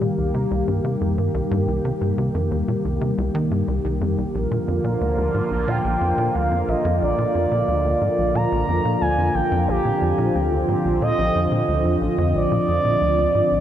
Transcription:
0.00 0.09 A#2 medium
0.00 4.31 D#3 medium
0.00 4.31 G3 medium
0.00 4.30 A#3 medium
0.00 4.31 G4 medium
0.18 0.34 C2 medium
0.34 0.47 C3 medium
0.51 0.63 C2 loud
0.68 0.80 G2 medium
0.84 0.97 C3 medium
1.01 1.17 F2 medium
1.18 1.30 G2 medium
1.34 1.42 C2 loud
1.51 1.67 G2 loud
1.68 1.80 C2 medium
1.85 1.92 C3 medium
2.01 2.13 G2 medium
2.18 2.30 C3 medium
2.35 2.50 F2 medium
2.51 2.63 D#2 medium
2.68 2.75 A#2 medium
2.85 3.01 C2 medium
3.01 3.13 C3 medium
3.18 3.30 C2 loud
3.35 3.50 D#3 medium
3.51 3.63 G2 medium
3.68 3.80 C2 medium
3.85 4.00 C2 medium
4.01 4.17 F2 medium
4.18 4.25 C2 medium
4.34 4.47 A#1 medium
4.34 13.60 D3 medium
4.34 13.60 F3 medium
4.34 9.64 A#3 medium
4.34 13.60 F4 medium
4.34 5.70 A#4 loud
4.51 4.59 A#2 medium
4.68 4.80 F2 medium
4.84 4.96 A#2 medium
5.01 5.17 D2 medium
5.18 5.30 D2 medium
5.34 5.42 G#2 medium
5.51 5.67 A#1 medium
5.68 5.80 A#2 medium
5.68 6.36 G5 loud
5.84 5.97 A#1 loud
6.01 6.13 F2 medium
6.18 6.30 A#2 medium
6.35 6.51 D2 medium
6.35 6.70 F5 loud
6.51 6.63 F2 medium
6.68 6.75 A#1 loud
6.68 7.01 D#5 medium
6.85 7.01 F2 loud
7.02 7.14 A#1 medium
7.02 8.36 D5 loud
7.18 7.25 A#2 medium
7.35 7.47 F2 medium
7.51 7.63 A#2 medium
7.68 7.84 D2 medium
7.85 7.97 D2 medium
8.01 8.09 G#2 medium
8.18 8.34 A#1 medium
8.35 8.47 A#2 medium
8.35 9.03 A#5 loud
8.52 8.64 A#1 loud
8.68 8.80 F2 medium
8.85 8.97 A#2 medium
9.01 9.17 D2 medium
9.01 9.36 G#5 loud
9.18 9.30 F2 medium
9.35 9.42 A#1 loud
9.35 9.68 G5 loud
9.52 9.67 F2 loud
9.68 9.80 A#1 medium
9.68 13.60 C4 medium
9.68 10.64 G4 medium
9.85 9.92 A#2 medium
10.02 10.14 F2 medium
10.18 10.30 A#2 medium
10.35 10.51 D2 medium
10.52 10.64 D2 medium
10.68 10.75 G#2 medium
10.85 11.01 A#1 medium
11.01 11.14 A#2 medium
11.01 11.97 D#5 loud
11.18 11.30 A#1 loud
11.35 11.47 F2 medium
11.52 11.64 A#2 medium
11.68 11.84 D2 medium
11.85 11.97 F2 medium
12.01 12.09 A#1 loud
12.18 12.34 F2 loud
12.35 12.47 A#1 medium
12.35 13.60 D5 loud
12.51 12.59 A#2 medium
12.68 12.80 F2 medium
12.85 12.97 A#2 medium
13.01 13.17 D2 medium
13.18 13.30 D2 medium
13.35 13.42 G#2 medium
13.51 13.60 A#1 medium

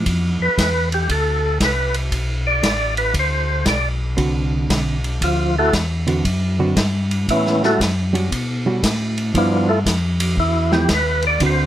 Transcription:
0.00 0.48 F3 medium
0.00 0.48 B3 medium
0.00 0.48 E4 medium
0.06 0.38 F2 medium
0.06 kick soft
0.06 ride medium
0.40 0.49 F2 soft
0.40 0.89 B4 medium
0.58 1.08 E2 medium
0.58 kick soft
0.58 snare medium
0.58 hi-hat pedal medium
0.58 ride medium
0.92 1.10 G4 medium
0.92 ride soft
1.09 1.59 D2 medium
1.09 1.58 A4 medium
1.09 kick soft
1.09 ride medium
1.60 2.10 C2 medium
1.60 kick soft
1.60 snare medium
1.60 hi-hat pedal medium
1.60 ride medium
1.65 1.96 B4 medium
1.94 ride soft
2.12 2.62 B1 medium
2.12 kick soft
2.12 ride medium
2.47 2.95 D5 medium
2.63 3.13 A1 medium
2.63 kick soft
2.63 snare medium
2.63 hi-hat pedal medium
2.63 ride medium
2.97 3.15 B4 medium
2.97 ride soft
3.14 3.65 D2 medium
3.14 kick soft
3.14 ride medium
3.19 3.65 C5 medium
3.66 4.16 B1 medium
3.66 3.89 D5 medium
3.66 kick soft
3.66 snare medium
3.66 hi-hat pedal medium
3.66 ride medium
4.17 4.68 C2 medium
4.17 4.97 D3 medium
4.17 4.97 C4 medium
4.17 4.97 F#4 medium
4.17 4.97 B4 medium
4.17 kick soft
4.17 ride medium
4.69 5.20 B1 medium
4.69 kick soft
4.69 snare medium
4.69 hi-hat pedal medium
4.69 ride medium
5.04 ride soft
5.21 5.71 D2 medium
5.21 5.56 F3 medium
5.21 5.56 F4 medium
5.21 kick soft
5.21 ride medium
5.59 5.74 A3 medium
5.59 5.74 E4 medium
5.59 5.75 F#4 medium
5.59 5.74 A4 medium
5.73 6.23 E2 medium
5.73 kick soft
5.73 snare medium
5.73 hi-hat pedal soft
5.73 ride medium
6.07 6.23 D3 medium
6.07 6.23 C4 medium
6.07 6.24 F#4 medium
6.07 6.24 B4 medium
6.07 ride soft
6.25 6.75 F#2 medium
6.25 kick soft
6.25 ride medium
6.59 6.75 D3 medium
6.59 6.75 C4 medium
6.59 6.75 F#4 medium
6.59 6.75 B4 medium
6.76 7.26 G2 medium
6.76 kick soft
6.76 snare medium
6.76 hi-hat pedal medium
6.76 ride medium
7.11 ride soft
7.28 7.78 A2 medium
7.28 7.62 E3 soft
7.28 7.63 B3 soft
7.28 7.63 C#4 soft
7.28 7.62 E4 medium
7.28 kick soft
7.28 ride medium
7.46 snare soft
7.63 7.78 G3 medium
7.63 7.80 A3 medium
7.63 7.79 C#4 medium
7.63 7.80 E4 medium
7.63 7.79 F#4 medium
7.63 7.81 F#4 medium
7.63 7.81 A4 medium
7.63 snare soft
7.80 8.30 F#2 medium
7.80 kick soft
7.80 snare medium
7.80 hi-hat pedal medium
7.80 ride medium
8.13 8.29 G3 medium
8.13 8.29 C#4 medium
8.13 8.30 F#4 medium
8.13 ride soft
8.31 8.81 B2 medium
8.31 kick soft
8.31 ride medium
8.66 8.81 G3 medium
8.66 8.81 C#4 medium
8.66 8.82 F#4 medium
8.83 9.33 A2 medium
8.83 kick soft
8.83 snare medium
8.83 hi-hat pedal medium
8.83 ride medium
9.18 ride soft
9.34 9.84 G2 medium
9.34 9.65 F3 medium
9.34 9.69 F3 medium
9.34 9.66 B3 medium
9.34 9.69 B3 soft
9.34 9.69 D4 soft
9.34 9.66 E4 medium
9.34 9.68 F4 medium
9.34 kick soft
9.34 ride medium
9.69 9.80 A3 medium
9.69 9.79 E4 medium
9.69 9.79 F4 medium
9.69 9.79 A4 medium
9.86 10.36 F2 medium
9.86 kick soft
9.86 snare medium
9.86 hi-hat pedal medium
9.86 ride medium
10.20 ride medium
10.37 10.87 E2 medium
10.37 10.72 E4 medium
10.37 kick soft
10.72 10.88 F3 medium
10.72 10.88 B3 medium
10.72 10.88 E4 medium
10.72 10.89 G4 medium
10.72 snare soft
10.88 11.39 D#2 medium
10.88 kick soft
10.88 snare medium
10.88 hi-hat pedal medium
10.88 ride medium
10.94 11.25 B4 medium
11.22 ride soft
11.27 11.42 D5 loud
11.40 11.66 D2 medium
11.40 11.66 D3 medium
11.40 11.66 C4 medium
11.40 11.66 F#4 medium
11.40 11.66 B4 medium
11.40 kick soft
11.40 ride medium
11.46 11.66 C5 medium

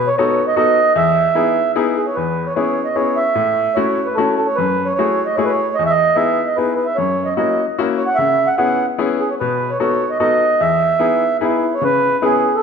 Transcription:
0.07 0.16 C#5 medium
0.17 0.38 B3 medium
0.17 0.38 D#4 medium
0.17 0.39 F#4 medium
0.17 0.39 A4 medium
0.17 0.45 C#5 medium
0.48 0.55 D#5 medium
0.56 0.77 B3 medium
0.56 0.77 D#4 soft
0.56 0.77 F#4 medium
0.56 0.77 A4 medium
0.56 0.93 D#5 loud
0.96 1.25 E2 medium
0.96 1.72 E5 loud
1.35 1.57 B3 medium
1.35 1.57 D#4 soft
1.35 1.56 E4 medium
1.35 1.57 G#4 medium
1.76 1.97 B3 medium
1.76 1.97 D#4 medium
1.76 1.97 E4 medium
1.76 1.97 G#4 medium
1.97 2.07 G#4 medium
2.06 2.16 C#5 medium
2.15 2.47 E2 medium
2.15 2.47 B4 medium
2.46 2.54 C#5 medium
2.55 2.78 B3 soft
2.55 2.78 C#4 soft
2.55 2.78 E4 soft
2.55 2.78 G#4 medium
2.55 2.88 C#5 medium
2.85 2.96 D#5 medium
2.95 3.18 B3 soft
2.95 3.18 C#4 soft
2.95 3.18 E4 soft
2.95 3.18 G#4 soft
2.95 3.18 C#5 medium
3.16 3.78 E5 medium
3.35 3.66 A2 medium
3.75 3.98 A3 soft
3.75 3.98 C#4 soft
3.75 3.98 E4 soft
3.75 3.98 F#4 medium
3.75 4.08 C#5 medium
4.05 4.16 B4 medium
4.14 4.38 A3 soft
4.14 4.39 C#4 medium
4.14 4.39 E4 soft
4.14 4.39 F#4 medium
4.14 4.35 A4 medium
4.37 4.47 A4 medium
4.46 4.57 C#5 medium
4.55 4.88 F#2 medium
4.55 4.88 B4 loud
4.85 4.93 C#5 medium
4.95 5.27 C#5 loud
4.99 5.19 A3 soft
4.99 5.19 E4 soft
4.99 5.19 F#4 medium
4.99 5.19 G#4 medium
5.26 5.36 D#5 medium
5.35 5.59 A3 soft
5.35 5.58 E4 soft
5.35 5.58 F#4 soft
5.35 5.59 G#4 medium
5.35 5.43 C#5 medium
5.45 5.52 B4 medium
5.49 5.76 C#5 medium
5.75 5.83 D#5 medium
5.79 6.08 E2 medium
5.86 6.17 D#5 loud
5.86 5.92 E5 medium
6.15 6.37 B3 medium
6.15 6.38 D#4 soft
6.15 6.38 E4 medium
6.15 6.38 G#4 medium
6.15 6.48 E5 medium
6.47 6.57 D#5 soft
6.55 6.79 B3 soft
6.55 6.79 D#4 soft
6.55 6.79 E4 soft
6.55 6.79 G#4 soft
6.55 6.74 B4 medium
6.76 6.87 B4 medium
6.86 6.97 E5 medium
6.95 7.29 F#2 medium
6.95 7.28 C#5 medium
7.25 7.34 D#5 medium
7.36 7.59 A#3 soft
7.36 7.59 C#4 soft
7.36 7.59 E4 soft
7.36 7.59 F#4 medium
7.36 7.66 D#5 medium
7.78 8.00 A#3 medium
7.78 8.00 C#4 soft
7.78 8.00 E4 soft
7.78 8.00 F#4 medium
7.97 8.08 C#5 medium
8.06 8.17 F#5 medium
8.15 8.49 C#3 medium
8.15 8.48 E5 loud
8.47 8.55 F#5 medium
8.57 8.79 B3 medium
8.57 8.80 C#4 soft
8.57 8.80 E4 soft
8.57 8.80 G#4 medium
8.57 8.86 F#5 medium
8.98 9.20 B3 medium
8.98 9.20 C#4 medium
8.98 9.20 E4 medium
8.98 9.20 G#4 medium
9.20 9.30 G#4 medium
9.30 9.34 C#5 medium
9.40 9.70 B2 medium
9.40 9.71 B4 medium
9.70 9.78 C#5 medium
9.79 10.01 B3 medium
9.79 10.01 D#4 soft
9.79 10.01 F#4 medium
9.79 10.01 A4 medium
9.79 10.11 C#5 medium
10.10 10.18 D#5 medium
10.19 10.41 B3 medium
10.19 10.41 D#4 soft
10.19 10.41 F#4 medium
10.19 10.41 A4 medium
10.19 10.61 D#5 loud
10.60 10.91 E2 medium
10.60 11.37 E5 medium
10.99 11.21 B3 medium
10.99 11.22 D#4 soft
10.99 11.22 E4 soft
10.99 11.22 G#4 medium
11.41 11.63 B3 medium
11.41 11.63 D#4 soft
11.41 11.63 E4 medium
11.41 11.75 E4 medium
11.41 11.63 G#4 medium
11.74 11.83 C#5 medium
11.81 12.13 C#3 medium
11.81 12.25 B4 loud
12.22 12.45 B3 medium
12.22 12.44 C#4 soft
12.22 12.44 E4 soft
12.22 12.44 G#4 medium
12.22 12.56 G#4 medium
12.55 12.63 A4 medium

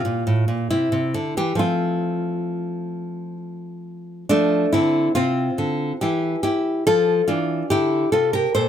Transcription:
0.00 0.67 F4 medium
0.05 0.25 A#2 medium
0.27 0.47 A2 medium
0.48 0.69 A#2 medium
0.70 0.91 C3 medium
0.70 1.34 E4 medium
0.92 1.13 C3 medium
1.14 1.35 D3 medium
1.37 1.55 E3 medium
1.37 1.59 G4 medium
1.55 4.24 F3 medium
1.55 4.25 A3 soft
1.55 4.26 C4 soft
1.55 3.37 F4 medium
4.29 4.65 F3 medium
4.29 4.71 A3 medium
4.29 4.71 D4 loud
4.73 5.08 D3 medium
4.73 5.13 C4 medium
4.73 5.14 E4 medium
5.15 5.49 C3 medium
5.15 5.96 C4 medium
5.15 5.96 F4 medium
5.58 5.92 D3 medium
6.01 6.35 E3 medium
6.01 6.41 E4 medium
6.01 6.41 G4 medium
6.43 6.83 E4 medium
6.43 6.84 G4 medium
6.87 7.21 F3 medium
6.87 7.26 F4 medium
6.87 7.27 A4 medium
7.28 7.62 E3 medium
7.28 7.67 D4 medium
7.28 7.68 F4 medium
7.70 8.04 D3 medium
7.70 8.10 E4 medium
7.70 8.10 G4 loud
8.12 8.46 C3 medium
8.12 8.32 F4 medium
8.12 8.33 A4 medium
8.33 8.54 G4 medium
8.33 8.54 A#4 medium
8.55 8.69 A#2 soft
8.55 8.69 A4 medium
8.55 8.69 C5 medium

